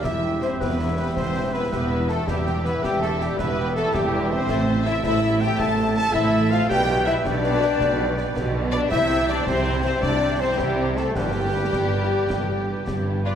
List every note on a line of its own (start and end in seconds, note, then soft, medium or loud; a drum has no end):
0.00 2.25 E3 medium
0.00 0.31 G4 medium
0.00 0.58 G4 medium
0.00 0.41 E5 medium
0.00 0.59 G5 medium
0.04 0.54 E1 medium
0.04 0.54 E2 medium
0.04 0.22 E4 medium
0.04 0.42 E4 medium
0.04 0.22 E5 medium
0.04 0.61 E5 medium
0.04 0.41 E5 medium
0.04 concert bass drum medium
0.04 snare medium
0.14 1.71 G3 medium
0.23 0.40 E4 medium
0.23 0.42 G4 medium
0.23 0.42 G5 medium
0.32 1.52 G4 soft
0.40 0.60 C4 loud
0.40 1.60 E4 medium
0.40 0.61 E4 medium
0.40 0.59 C5 medium
0.40 0.49 C5 medium
0.40 0.62 C5 medium
0.40 0.50 C5 medium
0.40 0.60 E5 medium
0.40 snare medium
0.51 0.69 E5 medium
0.58 1.10 E1 medium
0.58 1.10 E2 medium
0.58 1.57 G4 medium
0.58 0.79 G4 medium
0.58 0.96 B4 medium
0.58 0.98 B4 medium
0.58 0.97 B4 medium
0.58 1.70 E5 medium
0.58 0.78 G5 medium
0.58 0.79 G5 medium
0.58 concert bass drum medium
0.58 snare medium
0.63 0.96 B3 medium
0.70 0.87 E5 medium
0.80 0.97 E4 medium
0.80 0.97 E5 medium
0.88 1.05 E5 medium
0.97 1.16 B3 medium
0.97 1.17 G4 medium
0.97 1.03 B4 medium
0.97 1.05 B4 medium
0.97 1.06 B4 medium
0.97 1.16 B4 medium
0.97 1.15 G5 medium
0.97 1.17 G5 medium
1.06 1.24 E5 medium
1.14 1.65 E1 medium
1.14 1.66 E2 medium
1.14 1.54 C4 loud
1.14 1.35 E4 medium
1.14 1.52 C5 medium
1.14 1.53 C5 medium
1.14 1.55 C5 medium
1.14 1.35 E5 medium
1.14 1.33 G5 medium
1.14 concert bass drum medium
1.14 snare medium
1.25 1.42 E5 medium
1.34 1.54 G4 medium
1.34 2.81 G5 medium
1.34 1.54 G5 medium
1.43 2.71 E5 medium
1.52 1.63 B3 loud
1.52 1.71 E4 medium
1.52 2.53 G4 medium
1.52 1.68 B4 medium
1.52 1.70 B4 medium
1.52 1.72 B4 medium
1.52 1.71 E5 medium
1.62 1.80 E4 soft
1.69 2.21 E1 medium
1.69 2.21 E2 medium
1.69 1.89 G3 medium
1.69 2.09 B3 loud
1.69 1.90 G4 medium
1.69 2.07 B4 medium
1.69 2.08 B4 medium
1.69 2.11 B4 medium
1.69 2.09 B4 medium
1.69 2.07 E5 medium
1.69 1.91 G5 medium
1.69 concert bass drum medium
1.69 snare medium
1.74 2.08 G4 medium
1.81 1.98 E4 medium
1.90 2.07 G3 medium
1.90 2.10 E4 medium
1.90 2.10 E5 medium
1.99 2.16 E4 medium
2.07 2.35 G3 medium
2.07 2.28 A3 medium
2.07 2.28 G4 medium
2.07 2.27 A4 medium
2.07 2.29 A4 medium
2.07 2.28 A4 medium
2.07 2.28 G5 medium
2.07 snare soft
2.18 2.44 E4 medium
2.27 2.77 E1 medium
2.27 2.76 E2 medium
2.27 4.50 E3 medium
2.27 2.65 G3 loud
2.27 2.45 E4 medium
2.27 2.64 G4 medium
2.27 2.79 G4 medium
2.27 2.64 G4 medium
2.27 2.65 G4 loud
2.27 2.45 E5 medium
2.27 2.80 E5 medium
2.27 concert bass drum medium
2.27 snare medium
2.36 3.94 G3 medium
2.45 2.62 E4 medium
2.45 2.65 G4 medium
2.45 2.65 G5 medium
2.45 snare soft
2.63 2.73 B3 loud
2.63 3.85 E4 medium
2.63 2.83 E4 medium
2.63 2.83 B4 medium
2.63 2.85 B4 medium
2.63 2.83 B4 medium
2.63 2.84 E5 medium
2.63 snare soft
2.72 2.90 E5 medium
2.82 3.32 E1 medium
2.82 3.32 E2 medium
2.82 3.01 G3 loud
2.82 3.01 G4 medium
2.82 3.37 G4 medium
2.82 3.02 G4 medium
2.82 3.38 E5 medium
2.82 3.00 G5 medium
2.82 3.02 G5 medium
2.82 concert bass drum medium
2.82 snare medium
2.91 3.09 E5 medium
3.00 3.11 A3 medium
3.00 3.19 E4 medium
3.00 3.06 A4 medium
3.00 3.11 A4 medium
3.00 3.21 A4 medium
3.00 3.20 E5 medium
3.00 3.18 G5 medium
3.00 snare soft
3.04 3.21 A4 loud
3.19 3.40 G3 loud
3.19 3.38 G4 medium
3.19 3.39 G4 medium
3.19 3.40 G4 medium
3.19 3.38 G5 medium
3.19 3.40 G5 medium
3.19 snare medium
3.37 3.87 E1 medium
3.37 3.87 E2 medium
3.37 3.77 B3 loud
3.37 3.58 E4 medium
3.37 3.93 G4 medium
3.37 3.75 B4 medium
3.37 3.93 E5 medium
3.37 3.58 E5 medium
3.37 3.56 G5 medium
3.37 concert bass drum medium
3.37 snare medium
3.42 3.76 B4 medium
3.48 3.65 E5 medium
3.57 3.77 G4 medium
3.57 4.51 G5 medium
3.57 3.77 G5 medium
3.75 3.95 A3 loud
3.75 3.93 E4 medium
3.75 4.51 G4 medium
3.75 3.81 A4 medium
3.75 3.96 A4 loud
3.75 3.94 A4 medium
3.75 3.93 E5 medium
3.75 snare medium
3.86 4.02 E4 medium
3.93 4.42 E1 loud
3.93 4.43 E2 loud
3.93 4.11 G3 medium
3.93 4.31 G3 loud
3.93 4.30 G4 medium
3.93 4.52 G4 medium
3.93 4.31 G4 medium
3.93 4.32 G4 medium
3.93 4.13 G4 medium
3.93 4.31 G4 medium
3.93 4.48 E5 medium
3.93 4.13 G5 medium
3.93 concert bass drum medium
3.93 snare medium
4.04 4.20 E4 medium
4.12 4.30 G3 medium
4.12 4.31 E4 medium
4.12 4.31 E5 medium
4.21 4.38 E4 medium
4.30 4.51 G3 medium
4.30 4.86 C4 loud
4.30 4.49 G4 medium
4.30 4.61 C5 medium
4.30 4.85 C5 medium
4.30 4.86 C5 loud
4.30 4.49 G5 medium
4.48 4.98 A1 loud
4.48 4.97 A2 loud
4.48 6.72 A2 medium
4.48 4.67 A4 medium
4.48 5.04 A4 medium
4.48 4.66 E5 medium
4.48 5.03 E5 medium
4.48 concert bass drum medium
4.48 snare medium
4.48 crash soft
4.58 6.13 E3 medium
4.67 6.23 C4 medium
4.67 4.86 C5 medium
4.67 4.86 A5 medium
4.76 6.04 E4 medium
4.85 4.94 E4 loud
4.85 5.95 A4 medium
4.85 5.04 A4 medium
4.85 5.04 E5 medium
4.85 5.01 E5 loud
4.85 5.03 E5 medium
4.85 5.04 E5 loud
4.85 snare soft
4.95 5.85 C5 medium
5.02 5.53 A1 loud
5.02 5.53 A2 loud
5.02 5.41 E4 loud
5.02 5.59 A4 medium
5.02 5.23 C5 medium
5.02 5.40 E5 loud
5.02 5.58 E5 medium
5.02 5.21 E5 medium
5.02 5.43 E5 loud
5.02 5.41 E5 medium
5.02 5.41 E5 loud
5.02 5.23 A5 medium
5.02 concert bass drum medium
5.02 snare medium
5.13 5.31 A5 medium
5.22 5.40 A4 medium
5.22 5.40 E5 medium
5.32 5.50 A5 medium
5.41 5.60 G4 loud
5.41 5.60 C5 medium
5.41 5.61 G5 loud
5.41 5.59 G5 loud
5.41 5.60 G5 loud
5.41 5.60 G5 medium
5.41 5.60 A5 medium
5.58 6.08 A1 loud
5.58 6.08 A2 loud
5.58 5.95 A4 loud
5.58 6.14 A4 medium
5.58 5.79 A4 medium
5.58 6.13 E5 medium
5.58 5.77 E5 medium
5.58 5.79 E5 medium
5.58 5.95 A5 medium
5.58 5.95 A5 loud
5.58 5.95 A5 medium
5.58 concert bass drum medium
5.58 snare medium
5.78 5.97 C5 medium
5.78 6.72 E5 medium
5.78 5.97 A5 medium
5.95 6.14 A4 medium
5.95 6.15 A4 loud
5.95 6.13 E5 medium
5.95 6.15 A5 loud
5.95 6.14 A5 loud
5.95 6.02 A5 loud
5.95 6.14 A5 loud
6.05 6.71 E4 medium
6.12 6.64 A1 loud
6.12 6.63 A2 loud
6.12 6.32 E3 medium
6.12 6.51 E4 loud
6.12 6.72 A4 loud
6.12 6.33 C5 medium
6.12 6.52 E5 loud
6.12 6.51 E5 loud
6.12 6.71 E5 medium
6.12 6.33 A5 medium
6.12 concert bass drum medium
6.12 snare medium
6.24 6.42 C4 medium
6.32 6.51 E3 medium
6.32 6.51 A4 medium
6.32 6.52 E5 medium
6.43 6.60 C4 medium
6.51 6.72 E3 medium
6.51 6.69 F4 loud
6.51 6.70 C5 medium
6.51 6.69 F5 medium
6.51 6.70 F5 loud
6.51 6.69 F5 loud
6.51 6.70 F5 loud
6.51 6.70 A5 medium
6.51 snare medium
6.62 6.72 C4 medium
6.68 7.19 B1 loud
6.68 7.18 B2 loud
6.68 8.93 B2 medium
6.68 7.05 G4 loud
6.68 6.87 B4 medium
6.68 7.25 B4 medium
6.68 6.87 D5 medium
6.68 7.08 G5 loud
6.68 7.06 G5 loud
6.68 7.07 G5 loud
6.68 7.06 G5 loud
6.68 7.25 G5 medium
6.68 concert bass drum medium
6.68 snare medium
6.89 8.27 G3 medium
6.89 7.07 G4 medium
6.89 7.06 B4 medium
6.89 snare soft
6.99 7.16 D4 medium
7.06 7.15 E4 loud
7.06 8.08 G4 medium
7.06 7.24 B4 medium
7.06 7.26 D5 medium
7.06 7.14 E5 loud
7.06 7.25 E5 medium
7.06 7.25 E5 loud
7.06 snare medium
7.25 7.74 B1 loud
7.25 7.74 B2 loud
7.25 8.52 D4 loud
7.25 7.44 G4 medium
7.25 7.42 B4 medium
7.25 8.62 B4 loud
7.25 8.52 D5 medium
7.25 8.52 D5 loud
7.25 8.53 D5 loud
7.25 8.53 D5 medium
7.25 8.62 G5 loud
7.25 concert bass drum medium
7.25 snare medium
7.44 7.61 B4 medium
7.44 7.61 D5 medium
7.44 snare soft
7.54 7.70 G5 medium
7.62 7.81 G4 medium
7.62 7.81 B4 medium
7.62 snare medium
7.80 8.30 B1 loud
7.80 8.30 B2 loud
7.80 7.98 B4 medium
7.80 8.00 D5 medium
7.80 concert bass drum medium
7.80 snare medium
7.99 8.18 G4 medium
7.99 8.17 B4 medium
8.09 9.19 G4 medium
8.17 8.93 D4 medium
8.17 8.35 B4 medium
8.17 8.36 D5 medium
8.17 snare medium
8.28 8.45 G3 medium
8.36 8.85 B1 loud
8.36 8.85 B2 loud
8.36 8.54 B3 medium
8.36 8.56 G4 medium
8.36 8.55 B4 medium
8.36 concert bass drum medium
8.36 snare medium
8.46 8.62 G3 medium
8.55 8.72 B3 medium
8.55 8.74 B4 medium
8.55 8.74 D5 medium
8.64 8.82 G3 medium
8.72 8.93 B3 medium
8.72 8.90 D4 loud
8.72 8.93 G4 medium
8.72 8.93 B4 medium
8.72 8.80 D5 loud
8.72 8.90 D5 loud
8.72 8.82 D5 loud
8.83 9.00 G3 medium
8.90 9.41 C2 loud
8.90 9.41 C3 loud
8.90 11.17 C3 medium
8.90 9.27 E4 loud
8.90 9.10 E4 medium
8.90 9.44 C5 loud
8.90 9.10 C5 medium
8.90 9.27 E5 loud
8.90 9.28 E5 loud
8.90 9.43 G5 medium
8.90 concert bass drum medium
8.90 snare medium
9.01 10.58 G3 medium
9.11 9.29 C4 medium
9.11 9.29 G4 medium
9.11 9.29 E5 medium
9.28 10.49 C4 medium
9.28 9.47 D4 loud
9.28 9.48 E4 medium
9.28 9.48 C5 medium
9.28 9.47 D5 loud
9.28 9.47 D5 medium
9.28 9.47 D5 loud
9.28 snare medium
9.39 9.56 C5 medium
9.46 9.96 C2 loud
9.46 9.96 C3 loud
9.46 9.82 C4 loud
9.46 9.66 G4 medium
9.46 9.82 C5 loud
9.46 10.56 C5 medium
9.46 9.83 C5 loud
9.46 9.84 C5 loud
9.46 9.66 E5 medium
9.46 10.56 G5 medium
9.46 concert bass drum medium
9.46 snare medium
9.66 9.83 E4 medium
9.66 9.83 C5 medium
9.83 9.92 C4 loud
9.83 10.03 G4 medium
9.83 9.90 C5 medium
9.83 9.90 C5 loud
9.83 10.03 C5 loud
9.83 10.04 C5 loud
9.83 10.03 E5 medium
10.01 10.52 C2 medium
10.01 10.52 C3 medium
10.01 10.39 D4 loud
10.01 10.22 E4 medium
10.01 10.22 C5 medium
10.01 10.39 D5 loud
10.01 10.42 D5 loud
10.01 concert bass drum medium
10.01 snare medium
10.22 10.41 G4 medium
10.22 10.41 E5 medium
10.40 10.59 C4 loud
10.40 10.58 E4 medium
10.40 11.53 G4 medium
10.40 10.59 C5 medium
10.40 10.59 C5 loud
10.40 10.58 C5 medium
10.58 11.09 C2 medium
10.58 11.09 C3 loud
10.58 10.96 G3 loud
10.58 10.78 G3 medium
10.58 10.97 G4 medium
10.58 10.79 G4 medium
10.58 11.17 C5 medium
10.58 10.79 E5 medium
10.58 11.15 G5 medium
10.58 concert bass drum medium
10.58 snare medium
10.78 10.97 E4 medium
10.78 10.97 C5 medium
10.96 11.35 G3 medium
10.96 11.15 A3 loud
10.96 11.16 G4 medium
10.96 11.15 A4 medium
10.96 11.05 A4 medium
10.96 11.16 A4 medium
10.96 11.15 E5 medium
10.96 snare medium
11.14 11.67 G1 medium
11.14 11.66 G2 medium
11.14 13.35 G2 medium
11.14 11.69 G2 loud
11.14 13.24 G3 loud
11.14 11.33 D4 medium
11.14 12.98 G4 medium
11.14 13.21 G4 loud
11.14 13.21 G4 medium
11.14 13.21 G4 loud
11.14 13.25 B4 medium
11.14 11.34 B4 medium
11.14 13.20 G5 medium
11.14 concert bass drum medium
11.14 snare medium
11.26 12.86 D3 medium
11.35 11.54 G4 medium
11.35 11.54 D5 medium
11.45 11.63 B3 medium
11.55 11.73 D4 medium
11.55 11.73 B4 medium
11.64 12.67 B3 medium
11.73 12.23 G1 medium
11.73 12.23 G2 loud
11.73 11.92 G4 medium
11.73 11.92 B4 medium
11.73 11.92 D5 medium
11.73 concert bass drum medium
11.73 snare medium
11.92 12.10 D4 medium
11.92 12.10 B4 medium
12.11 12.30 G4 medium
12.11 12.29 B4 medium
12.11 12.30 D5 medium
12.29 12.80 G1 medium
12.29 12.81 G2 medium
12.29 12.49 D4 medium
12.29 12.49 B4 medium
12.29 12.48 B4 medium
12.29 concert bass drum medium
12.29 snare medium
12.49 12.68 G4 medium
12.49 13.35 B4 medium
12.49 12.68 D5 medium
12.68 13.35 B3 medium
12.68 12.85 D4 medium
12.68 12.85 B4 medium
12.87 13.35 G1 medium
12.87 13.35 G2 loud
12.87 13.05 D3 medium
12.87 13.06 G4 medium
12.87 13.06 D5 medium
12.87 concert bass drum medium
12.87 snare medium
12.97 13.16 G3 medium
13.06 13.24 D3 medium
13.06 13.25 D4 medium
13.06 13.25 B4 medium
13.17 13.34 G3 medium
13.25 13.35 D3 medium
13.25 13.33 F4 medium
13.25 13.35 G4 medium
13.25 13.33 B4 medium
13.25 13.32 D5 medium
13.25 13.34 D5 medium
13.25 13.35 D5 medium